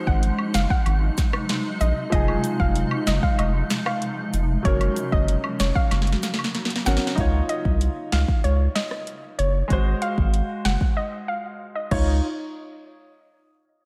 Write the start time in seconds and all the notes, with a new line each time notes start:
Already playing: C3 F#3 G#3 D#4 F#4 C5
0.07 G#1 F#5, kick
0.23 closed hi-hat
0.39 high woodblock
0.54 F#1 F5, snare, closed hi-hat, cabasa
0.70 F#5, kick
0.86 G#1, closed hi-hat, high woodblock
1.17 kick, snare, closed hi-hat, cabasa
1.33 cross-stick, high woodblock
1.49 snare, closed hi-hat
1.80 A#1 D#5, closed hi-hat, cabasa
2.10 F1 F3 D#4 D#5, kick, closed hi-hat
2.15 G#4
2.28 high woodblock
2.44 closed hi-hat, cabasa
2.60 F1 F5, kick
2.76 closed hi-hat
2.91 high woodblock
3.07 F#1 D#5, snare, closed hi-hat, cabasa
3.23 F5, kick
3.39 F1 D#5, closed hi-hat, high woodblock
3.70 snare, closed hi-hat, cabasa
3.86 F5, cross-stick, high woodblock
4.02 closed hi-hat
4.33 F1, closed hi-hat, cabasa
4.63 F#1 C#3 F#3 A#3 C#4 F#4 C#5, kick, closed hi-hat
4.67 A#4
4.81 closed hi-hat, high woodblock
4.96 closed hi-hat, cabasa
5.12 F#1 D#5, kick
5.28 closed hi-hat
5.44 high woodblock
5.60 F1 C#5, snare, closed hi-hat, cabasa
5.75 F5, kick
5.91 F#1, snare, closed hi-hat, high woodblock
6.02 snare
6.07 closed hi-hat
6.12 snare
6.23 snare, closed hi-hat, cabasa
6.34 snare
6.39 high woodblock
6.44 snare
6.55 snare, closed hi-hat
6.65 snare
6.70 closed hi-hat
6.76 snare
6.85 G#1 F#3 C#4 A#4 F#5, snare, closed hi-hat, cabasa
6.97 snare
7.07 snare
7.15 C#2 D#4 F4, kick, closed hi-hat
7.20 C#5
7.49 D#5, closed hi-hat
7.65 C2, kick
7.81 closed hi-hat
8.12 C#2 F5, snare, closed hi-hat
8.28 kick
8.44 C#2 C#5, closed hi-hat
8.75 D#5, snare, closed hi-hat
8.91 cross-stick
9.07 closed hi-hat
9.39 F#1 C#5, closed hi-hat
9.68 G#1 G#3 F#4, kick, closed hi-hat
9.73 C5
10.02 F5, closed hi-hat
10.18 G#1, kick
10.34 closed hi-hat
10.65 F#1 F#5, snare, closed hi-hat
10.81 kick
10.97 D#5
11.28 F5
11.75 D#5
11.91 C#2 D#4 F4 C#5, kick, crash